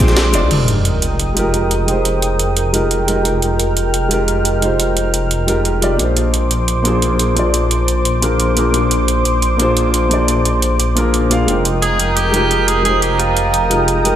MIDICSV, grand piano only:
0, 0, Header, 1, 2, 480
1, 0, Start_track
1, 0, Tempo, 342857
1, 713, Time_signature, 4, 2, 24, 8
1, 19820, End_track
2, 0, Start_track
2, 0, Title_t, "Grand piano"
2, 0, Program_c, 0, 0
2, 0, Control_c, 0, 64, 127
2, 0, Note_on_c, 0, 56, 95
2, 0, Note_on_c, 0, 60, 88
2, 0, Note_on_c, 0, 62, 88
2, 0, Note_on_c, 0, 65, 77
2, 0, Note_on_c, 0, 70, 110
2, 0, Note_on_c, 0, 72, 94
2, 1, Note_off_c, 0, 65, 0
2, 1, Note_on_c, 0, 65, 91
2, 10, Note_on_c, 0, 68, 102
2, 434, Note_off_c, 0, 56, 0
2, 440, Note_off_c, 0, 60, 0
2, 445, Note_off_c, 0, 62, 0
2, 449, Note_off_c, 0, 65, 0
2, 454, Note_off_c, 0, 68, 0
2, 455, Note_on_c, 0, 56, 92
2, 463, Note_on_c, 0, 60, 85
2, 472, Note_on_c, 0, 62, 90
2, 481, Note_on_c, 0, 65, 88
2, 491, Note_on_c, 0, 74, 105
2, 655, Note_off_c, 0, 56, 0
2, 676, Note_on_c, 0, 56, 74
2, 680, Note_off_c, 0, 60, 0
2, 685, Note_off_c, 0, 62, 0
2, 689, Note_off_c, 0, 65, 0
2, 694, Note_off_c, 0, 74, 0
2, 694, Note_on_c, 0, 63, 67
2, 712, Note_on_c, 0, 65, 65
2, 730, Control_c, 0, 64, 0
2, 730, Note_on_c, 0, 67, 68
2, 731, Note_off_c, 0, 70, 0
2, 739, Note_off_c, 0, 72, 0
2, 747, Note_on_c, 0, 70, 79
2, 991, Control_c, 0, 64, 127
2, 1854, Note_off_c, 0, 56, 0
2, 1873, Note_off_c, 0, 63, 0
2, 1875, Note_on_c, 0, 56, 86
2, 1885, Note_off_c, 0, 65, 0
2, 1894, Note_off_c, 0, 67, 0
2, 1894, Note_on_c, 0, 63, 80
2, 1902, Note_off_c, 0, 70, 0
2, 1912, Note_on_c, 0, 65, 79
2, 1929, Note_on_c, 0, 67, 80
2, 1947, Note_on_c, 0, 70, 95
2, 2575, Note_off_c, 0, 56, 0
2, 2592, Note_off_c, 0, 63, 0
2, 2596, Note_on_c, 0, 56, 78
2, 2605, Note_off_c, 0, 65, 0
2, 2613, Note_off_c, 0, 67, 0
2, 2613, Note_on_c, 0, 63, 69
2, 2622, Note_off_c, 0, 70, 0
2, 2631, Note_on_c, 0, 65, 74
2, 2650, Note_on_c, 0, 67, 73
2, 2667, Note_on_c, 0, 72, 85
2, 3787, Note_off_c, 0, 56, 0
2, 3795, Note_off_c, 0, 63, 0
2, 3804, Note_off_c, 0, 65, 0
2, 3814, Note_off_c, 0, 67, 0
2, 3815, Note_on_c, 0, 56, 79
2, 3822, Note_off_c, 0, 72, 0
2, 3823, Note_on_c, 0, 63, 75
2, 3832, Note_on_c, 0, 65, 70
2, 3842, Note_on_c, 0, 67, 72
2, 3851, Note_on_c, 0, 70, 86
2, 4020, Note_off_c, 0, 56, 0
2, 4024, Note_off_c, 0, 63, 0
2, 4029, Note_off_c, 0, 65, 0
2, 4034, Note_off_c, 0, 67, 0
2, 4038, Note_off_c, 0, 70, 0
2, 4293, Note_on_c, 0, 56, 80
2, 4302, Note_on_c, 0, 63, 76
2, 4312, Note_on_c, 0, 65, 72
2, 4319, Note_on_c, 0, 67, 74
2, 4329, Note_on_c, 0, 70, 86
2, 4494, Note_off_c, 0, 56, 0
2, 4512, Note_off_c, 0, 63, 0
2, 4515, Note_on_c, 0, 56, 77
2, 4524, Note_off_c, 0, 65, 0
2, 4528, Note_off_c, 0, 67, 0
2, 4533, Note_off_c, 0, 70, 0
2, 4533, Note_on_c, 0, 63, 69
2, 4552, Note_on_c, 0, 65, 69
2, 4570, Note_on_c, 0, 67, 68
2, 4587, Note_on_c, 0, 70, 81
2, 5696, Note_off_c, 0, 56, 0
2, 5714, Note_off_c, 0, 63, 0
2, 5717, Note_on_c, 0, 56, 91
2, 5725, Note_off_c, 0, 65, 0
2, 5734, Note_off_c, 0, 67, 0
2, 5735, Note_on_c, 0, 63, 81
2, 5742, Note_off_c, 0, 70, 0
2, 5753, Note_on_c, 0, 65, 83
2, 5771, Note_on_c, 0, 67, 80
2, 5789, Note_on_c, 0, 70, 94
2, 6417, Note_off_c, 0, 56, 0
2, 6434, Note_off_c, 0, 63, 0
2, 6438, Note_on_c, 0, 56, 81
2, 6445, Note_off_c, 0, 65, 0
2, 6454, Note_off_c, 0, 67, 0
2, 6455, Note_on_c, 0, 63, 74
2, 6463, Note_off_c, 0, 70, 0
2, 6474, Note_on_c, 0, 65, 72
2, 6492, Note_on_c, 0, 67, 73
2, 6510, Note_on_c, 0, 72, 86
2, 7628, Note_off_c, 0, 56, 0
2, 7636, Note_off_c, 0, 63, 0
2, 7646, Note_off_c, 0, 65, 0
2, 7654, Note_on_c, 0, 56, 87
2, 7655, Note_off_c, 0, 67, 0
2, 7662, Note_on_c, 0, 63, 83
2, 7664, Note_off_c, 0, 72, 0
2, 7671, Note_on_c, 0, 65, 80
2, 7681, Note_on_c, 0, 67, 80
2, 7689, Note_on_c, 0, 70, 97
2, 8114, Note_off_c, 0, 56, 0
2, 8120, Note_off_c, 0, 63, 0
2, 8124, Note_off_c, 0, 65, 0
2, 8129, Note_off_c, 0, 67, 0
2, 8133, Note_off_c, 0, 70, 0
2, 8135, Note_on_c, 0, 56, 88
2, 8144, Note_on_c, 0, 63, 79
2, 8152, Note_on_c, 0, 65, 80
2, 8161, Note_on_c, 0, 67, 82
2, 8170, Note_on_c, 0, 74, 96
2, 8355, Note_on_c, 0, 58, 76
2, 8356, Note_off_c, 0, 56, 0
2, 8361, Note_off_c, 0, 63, 0
2, 8365, Note_off_c, 0, 65, 0
2, 8369, Note_off_c, 0, 67, 0
2, 8373, Note_on_c, 0, 62, 66
2, 8374, Note_off_c, 0, 74, 0
2, 8391, Note_on_c, 0, 65, 66
2, 8409, Note_on_c, 0, 68, 68
2, 8412, Control_c, 0, 64, 0
2, 8427, Note_on_c, 0, 72, 80
2, 8642, Control_c, 0, 64, 127
2, 9534, Note_off_c, 0, 58, 0
2, 9552, Note_off_c, 0, 62, 0
2, 9555, Note_on_c, 0, 58, 90
2, 9564, Note_off_c, 0, 65, 0
2, 9573, Note_off_c, 0, 68, 0
2, 9573, Note_on_c, 0, 62, 81
2, 9582, Note_off_c, 0, 72, 0
2, 9591, Note_on_c, 0, 65, 81
2, 9608, Note_on_c, 0, 68, 81
2, 9627, Note_on_c, 0, 72, 92
2, 10256, Note_off_c, 0, 58, 0
2, 10273, Note_off_c, 0, 62, 0
2, 10277, Note_on_c, 0, 58, 78
2, 10284, Note_off_c, 0, 65, 0
2, 10293, Note_off_c, 0, 68, 0
2, 10294, Note_on_c, 0, 62, 70
2, 10302, Note_off_c, 0, 72, 0
2, 10312, Note_on_c, 0, 65, 71
2, 10331, Note_on_c, 0, 68, 72
2, 10349, Note_on_c, 0, 74, 89
2, 11467, Note_off_c, 0, 58, 0
2, 11476, Note_off_c, 0, 62, 0
2, 11485, Note_off_c, 0, 65, 0
2, 11494, Note_off_c, 0, 68, 0
2, 11494, Note_on_c, 0, 58, 77
2, 11503, Note_off_c, 0, 74, 0
2, 11503, Note_on_c, 0, 62, 71
2, 11512, Note_on_c, 0, 65, 73
2, 11521, Note_on_c, 0, 68, 73
2, 11530, Note_on_c, 0, 70, 86
2, 11700, Note_off_c, 0, 58, 0
2, 11704, Note_off_c, 0, 62, 0
2, 11709, Note_off_c, 0, 65, 0
2, 11713, Note_off_c, 0, 68, 0
2, 11717, Note_off_c, 0, 70, 0
2, 11975, Note_on_c, 0, 58, 79
2, 11985, Note_on_c, 0, 62, 74
2, 11994, Note_on_c, 0, 65, 72
2, 12003, Note_on_c, 0, 68, 73
2, 12012, Note_on_c, 0, 70, 88
2, 12175, Note_off_c, 0, 58, 0
2, 12193, Note_off_c, 0, 62, 0
2, 12196, Note_on_c, 0, 58, 73
2, 12206, Note_off_c, 0, 65, 0
2, 12210, Note_off_c, 0, 68, 0
2, 12214, Note_off_c, 0, 70, 0
2, 12214, Note_on_c, 0, 62, 68
2, 12233, Note_on_c, 0, 65, 68
2, 12250, Note_on_c, 0, 68, 66
2, 12268, Note_on_c, 0, 72, 84
2, 13376, Note_off_c, 0, 58, 0
2, 13394, Note_off_c, 0, 62, 0
2, 13397, Note_on_c, 0, 58, 87
2, 13405, Note_off_c, 0, 65, 0
2, 13414, Note_off_c, 0, 68, 0
2, 13415, Note_on_c, 0, 62, 80
2, 13423, Note_off_c, 0, 72, 0
2, 13433, Note_on_c, 0, 65, 84
2, 13451, Note_on_c, 0, 68, 79
2, 13469, Note_on_c, 0, 72, 102
2, 14096, Note_off_c, 0, 58, 0
2, 14114, Note_off_c, 0, 62, 0
2, 14117, Note_on_c, 0, 58, 84
2, 14125, Note_off_c, 0, 65, 0
2, 14134, Note_off_c, 0, 68, 0
2, 14135, Note_on_c, 0, 62, 75
2, 14143, Note_off_c, 0, 72, 0
2, 14152, Note_on_c, 0, 65, 75
2, 14171, Note_on_c, 0, 68, 70
2, 14189, Note_on_c, 0, 74, 89
2, 15307, Note_off_c, 0, 58, 0
2, 15316, Note_off_c, 0, 62, 0
2, 15325, Note_off_c, 0, 65, 0
2, 15334, Note_off_c, 0, 68, 0
2, 15334, Note_on_c, 0, 58, 92
2, 15343, Note_off_c, 0, 74, 0
2, 15343, Note_on_c, 0, 62, 82
2, 15352, Note_on_c, 0, 65, 82
2, 15361, Note_on_c, 0, 68, 78
2, 15370, Note_on_c, 0, 70, 103
2, 15793, Note_off_c, 0, 58, 0
2, 15800, Note_off_c, 0, 62, 0
2, 15805, Note_off_c, 0, 65, 0
2, 15809, Note_off_c, 0, 68, 0
2, 15814, Note_off_c, 0, 70, 0
2, 15814, Note_on_c, 0, 58, 88
2, 15823, Note_on_c, 0, 62, 83
2, 15831, Note_on_c, 0, 65, 83
2, 15841, Note_on_c, 0, 68, 80
2, 15850, Note_on_c, 0, 77, 100
2, 16036, Note_off_c, 0, 58, 0
2, 16037, Note_on_c, 0, 56, 73
2, 16040, Note_off_c, 0, 62, 0
2, 16044, Note_off_c, 0, 65, 0
2, 16049, Note_off_c, 0, 68, 0
2, 16053, Note_off_c, 0, 77, 0
2, 16055, Note_on_c, 0, 63, 67
2, 16072, Note_on_c, 0, 65, 67
2, 16087, Control_c, 0, 64, 0
2, 16091, Note_on_c, 0, 79, 69
2, 16109, Note_on_c, 0, 70, 80
2, 16373, Control_c, 0, 64, 127
2, 17215, Note_off_c, 0, 56, 0
2, 17232, Note_off_c, 0, 63, 0
2, 17236, Note_on_c, 0, 56, 88
2, 17245, Note_off_c, 0, 65, 0
2, 17253, Note_on_c, 0, 63, 85
2, 17254, Note_off_c, 0, 79, 0
2, 17263, Note_off_c, 0, 70, 0
2, 17272, Note_on_c, 0, 65, 85
2, 17290, Note_on_c, 0, 67, 82
2, 17308, Note_on_c, 0, 70, 100
2, 17934, Note_off_c, 0, 56, 0
2, 17952, Note_off_c, 0, 63, 0
2, 17955, Note_on_c, 0, 56, 80
2, 17964, Note_off_c, 0, 65, 0
2, 17973, Note_off_c, 0, 67, 0
2, 17973, Note_on_c, 0, 63, 72
2, 17982, Note_off_c, 0, 70, 0
2, 17990, Note_on_c, 0, 65, 73
2, 18009, Note_on_c, 0, 67, 70
2, 18027, Note_on_c, 0, 72, 84
2, 19146, Note_off_c, 0, 56, 0
2, 19155, Note_off_c, 0, 63, 0
2, 19164, Note_off_c, 0, 65, 0
2, 19173, Note_off_c, 0, 67, 0
2, 19175, Note_on_c, 0, 56, 77
2, 19182, Note_off_c, 0, 72, 0
2, 19184, Note_on_c, 0, 63, 74
2, 19193, Note_on_c, 0, 65, 75
2, 19201, Note_on_c, 0, 67, 74
2, 19210, Note_on_c, 0, 70, 85
2, 19380, Note_off_c, 0, 56, 0
2, 19384, Note_off_c, 0, 63, 0
2, 19389, Note_off_c, 0, 65, 0
2, 19393, Note_off_c, 0, 67, 0
2, 19398, Note_off_c, 0, 70, 0
2, 19653, Note_on_c, 0, 56, 81
2, 19662, Note_on_c, 0, 63, 72
2, 19672, Note_on_c, 0, 65, 73
2, 19680, Note_on_c, 0, 67, 74
2, 19688, Note_on_c, 0, 70, 89
2, 19820, Note_off_c, 0, 56, 0
2, 19820, Note_off_c, 0, 63, 0
2, 19820, Note_off_c, 0, 65, 0
2, 19820, Note_off_c, 0, 67, 0
2, 19820, Note_off_c, 0, 70, 0
2, 19820, End_track
0, 0, End_of_file